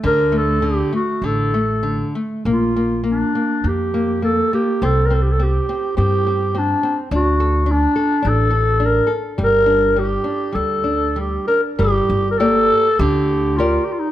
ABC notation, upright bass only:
X:1
M:4/4
L:1/8
Q:1/4=102
K:Gm
V:1 name="Upright bass" clef=bass
D,,4 A,,,4 | B,,,4 F,,4 | C,,4 G,,4 | D,,4 A,,,4 |
G,,,4 D,,4 | G,,, G,,,3 D,,4 |]